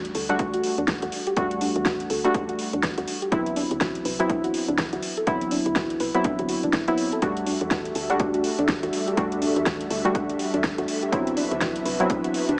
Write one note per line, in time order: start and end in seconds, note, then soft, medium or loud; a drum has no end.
0.00 0.11 E2 medium
0.00 0.26 G3 medium
0.00 0.26 A3 medium
0.00 0.26 D4 medium
0.00 0.26 F#4 loud
0.05 closed hi-hat medium
0.15 0.55 D2 medium
0.15 0.19 A4 medium
0.15 open hi-hat loud
0.29 1.34 G3 medium
0.29 1.34 A3 medium
0.29 1.34 D4 medium
0.29 0.36 F#4 medium
0.29 1.35 F#4 loud
0.29 closed hi-hat soft
0.39 0.43 D4 medium
0.39 kick loud
0.39 closed hi-hat medium
0.54 0.61 E2 medium
0.54 0.61 F#4 medium
0.54 closed hi-hat medium
0.63 open hi-hat loud
0.78 0.96 E2 medium
0.78 0.81 D4 loud
0.78 closed hi-hat soft
0.88 kick loud
0.88 snare loud
0.88 closed hi-hat medium
1.02 1.10 E2 loud
1.02 1.07 F#4 medium
1.02 closed hi-hat medium
1.12 open hi-hat loud
1.27 1.30 G4 medium
1.27 closed hi-hat soft
1.37 1.70 E2 loud
1.37 2.21 G3 medium
1.37 2.21 A3 medium
1.37 1.41 D4 medium
1.37 2.21 D4 medium
1.37 2.21 F#4 loud
1.37 kick loud
1.37 closed hi-hat medium
1.51 closed hi-hat medium
1.61 1.68 D4 loud
1.61 open hi-hat loud
1.76 2.06 E2 medium
1.76 closed hi-hat soft
1.85 1.90 F#4 loud
1.85 kick loud
1.85 snare loud
1.85 closed hi-hat medium
2.00 closed hi-hat medium
2.10 2.50 D2 medium
2.10 2.14 A4 medium
2.10 open hi-hat loud
2.24 3.29 G3 medium
2.24 3.30 A3 medium
2.24 3.30 D4 medium
2.24 2.31 F#4 medium
2.24 3.30 F#4 loud
2.24 closed hi-hat soft
2.34 2.38 D4 medium
2.34 kick loud
2.34 closed hi-hat medium
2.49 2.56 E2 medium
2.49 2.56 F#4 medium
2.49 closed hi-hat medium
2.59 open hi-hat loud
2.73 2.91 E2 medium
2.73 2.76 D4 loud
2.73 closed hi-hat soft
2.83 kick loud
2.83 snare loud
2.83 closed hi-hat medium
2.98 3.05 E2 loud
2.98 3.02 F#4 medium
2.98 closed hi-hat medium
3.08 open hi-hat loud
3.22 3.25 G4 medium
3.22 closed hi-hat soft
3.32 3.65 D2 medium
3.32 4.16 F#3 medium
3.32 4.16 B3 medium
3.32 4.16 C4 medium
3.32 3.36 D4 medium
3.32 4.16 E4 loud
3.32 kick loud
3.32 closed hi-hat medium
3.46 closed hi-hat soft
3.56 3.63 D4 loud
3.56 open hi-hat loud
3.71 4.02 D2 medium
3.71 closed hi-hat soft
3.81 3.85 F#4 medium
3.81 kick loud
3.81 snare loud
3.81 closed hi-hat medium
3.95 closed hi-hat soft
4.05 4.46 C2 medium
4.05 4.09 B4 medium
4.05 open hi-hat loud
4.19 5.25 F#3 medium
4.19 5.25 B3 medium
4.19 5.25 C4 medium
4.19 5.25 E4 loud
4.19 4.26 F#4 medium
4.19 closed hi-hat soft
4.29 4.33 D4 medium
4.29 kick loud
4.29 closed hi-hat medium
4.44 4.52 D2 medium
4.44 4.51 F#4 medium
4.44 closed hi-hat medium
4.54 open hi-hat loud
4.68 4.86 D2 medium
4.68 4.71 D4 loud
4.68 closed hi-hat soft
4.78 kick loud
4.78 snare loud
4.78 closed hi-hat medium
4.93 5.00 D2 medium
4.93 4.97 F#4 medium
4.93 closed hi-hat soft
5.03 open hi-hat loud
5.17 5.20 A4 medium
5.17 closed hi-hat soft
5.27 5.61 D2 loud
5.27 6.11 F#3 medium
5.27 6.11 B3 medium
5.27 6.11 C4 medium
5.27 5.31 D4 medium
5.27 6.11 E4 loud
5.27 kick loud
5.27 closed hi-hat medium
5.41 closed hi-hat medium
5.51 5.58 D4 loud
5.51 open hi-hat loud
5.66 5.96 D2 medium
5.66 closed hi-hat soft
5.76 5.80 F#4 loud
5.76 kick loud
5.76 snare loud
5.76 closed hi-hat medium
5.90 closed hi-hat soft
6.00 6.11 C2 medium
6.00 6.04 B4 medium
6.00 open hi-hat loud
6.14 6.85 F#3 medium
6.14 6.85 B3 medium
6.14 6.85 C4 medium
6.14 6.85 E4 loud
6.14 6.22 F#4 medium
6.14 closed hi-hat soft
6.24 6.29 D4 medium
6.24 kick loud
6.24 closed hi-hat medium
6.39 6.57 D2 loud
6.39 6.46 F#4 medium
6.39 closed hi-hat soft
6.49 6.56 F#4 medium
6.49 open hi-hat loud
6.63 6.81 D1 loud
6.63 6.68 D4 medium
6.63 closed hi-hat soft
6.73 kick loud
6.73 snare loud
6.73 closed hi-hat medium
6.88 7.18 A1 medium
6.88 7.20 F#3 loud
6.88 7.20 B3 medium
6.88 7.20 C4 medium
6.88 7.20 E4 loud
6.88 6.91 F#4 medium
6.88 closed hi-hat soft
6.98 open hi-hat loud
7.12 7.17 A4 medium
7.12 closed hi-hat soft
7.22 7.56 E2 loud
7.22 8.06 G3 medium
7.22 11.08 G3 medium
7.22 8.06 A3 medium
7.22 12.59 D4 medium
7.22 7.26 D4 medium
7.22 8.06 D4 medium
7.22 11.08 F#4 medium
7.22 8.07 F#4 loud
7.22 11.08 A4 medium
7.22 12.59 E5 medium
7.22 kick loud
7.22 closed hi-hat medium
7.37 closed hi-hat soft
7.46 7.53 D4 loud
7.46 open hi-hat loud
7.61 7.92 E2 medium
7.61 closed hi-hat soft
7.71 7.75 F#4 loud
7.71 kick loud
7.71 snare loud
7.71 closed hi-hat medium
7.85 closed hi-hat soft
7.95 8.36 D2 medium
7.95 7.99 A4 medium
7.95 open hi-hat loud
8.10 9.15 G3 medium
8.10 9.15 A3 medium
8.10 9.15 D4 medium
8.10 8.17 F#4 medium
8.10 9.15 F#4 loud
8.10 closed hi-hat soft
8.20 8.24 D4 medium
8.20 kick loud
8.20 closed hi-hat medium
8.34 8.42 E2 medium
8.34 8.41 F#4 medium
8.34 closed hi-hat medium
8.44 open hi-hat loud
8.59 8.76 E2 medium
8.59 8.61 D4 loud
8.59 closed hi-hat soft
8.68 kick loud
8.68 snare loud
8.68 closed hi-hat medium
8.83 8.91 E2 loud
8.83 8.88 F#4 medium
8.83 closed hi-hat soft
8.93 open hi-hat loud
9.07 9.10 G4 medium
9.07 closed hi-hat soft
9.17 9.51 E2 loud
9.17 10.01 G3 medium
9.17 10.01 A3 medium
9.17 9.21 D4 medium
9.17 10.02 D4 medium
9.17 10.02 F#4 loud
9.17 kick loud
9.17 closed hi-hat medium
9.32 closed hi-hat medium
9.42 9.48 D4 loud
9.42 open hi-hat loud
9.56 9.87 E2 loud
9.56 closed hi-hat soft
9.66 9.70 F#4 loud
9.66 kick loud
9.66 snare loud
9.66 closed hi-hat medium
9.81 closed hi-hat medium
9.90 10.31 D2 medium
9.90 9.95 A4 medium
9.90 open hi-hat loud
10.05 11.10 G3 medium
10.05 11.10 A3 medium
10.05 11.10 D4 medium
10.05 10.12 F#4 medium
10.05 11.10 F#4 loud
10.05 closed hi-hat soft
10.15 10.19 D4 medium
10.15 kick loud
10.15 closed hi-hat medium
10.29 10.37 E2 medium
10.29 10.36 F#4 medium
10.29 closed hi-hat medium
10.39 open hi-hat loud
10.54 10.71 E2 medium
10.54 10.57 D4 loud
10.54 closed hi-hat soft
10.64 kick loud
10.64 snare loud
10.64 closed hi-hat medium
10.78 10.86 E2 loud
10.78 10.83 F#4 medium
10.78 closed hi-hat medium
10.88 open hi-hat loud
11.03 11.05 G4 medium
11.03 closed hi-hat soft
11.12 11.46 D2 medium
11.12 11.96 F#3 medium
11.12 11.97 B3 medium
11.12 11.97 C4 medium
11.12 11.16 D4 medium
11.12 11.97 E4 loud
11.12 12.59 F#4 medium
11.12 12.59 B4 medium
11.12 kick loud
11.12 closed hi-hat medium
11.27 closed hi-hat medium
11.37 11.44 D4 loud
11.37 open hi-hat loud
11.51 11.82 D2 medium
11.51 closed hi-hat soft
11.61 11.65 F#4 loud
11.61 kick loud
11.61 snare loud
11.61 closed hi-hat medium
11.76 closed hi-hat medium
11.86 12.26 C2 medium
11.86 11.90 B4 medium
11.86 open hi-hat loud
12.00 12.59 F#3 medium
12.00 12.59 B3 medium
12.00 12.59 C4 medium
12.00 12.59 E4 loud
12.00 12.07 F#4 medium
12.00 closed hi-hat soft
12.10 12.14 D4 medium
12.10 kick loud
12.10 closed hi-hat medium
12.24 12.32 D2 medium
12.24 12.31 F#4 medium
12.24 closed hi-hat medium
12.34 open hi-hat medium
12.49 12.59 D2 medium
12.49 12.52 D4 loud
12.49 closed hi-hat soft